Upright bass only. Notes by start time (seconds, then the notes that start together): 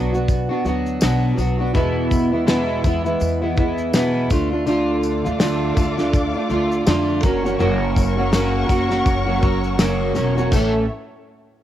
Already playing: B1
0.65 D2
1.02 B1
1.38 B1
1.75 E2
2.84 E2
3.21 E2
4.31 D2
5.26 D2
5.77 D2
6.50 D2
6.87 F2
7.23 F#1
7.60 F#1
8.69 F#1
9.06 F#1
10.16 E1
10.52 A1